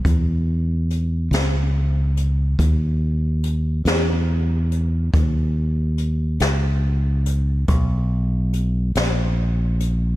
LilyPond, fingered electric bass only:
\new Staff \with { instrumentName = "Fingered electric bass" } { \clef bass \time 12/8 \key cis \dorian \tempo 4. = 47 e,4. cis,4. dis,4. e,4. | dis,4. cis,4. b,,4. ais,,4. | }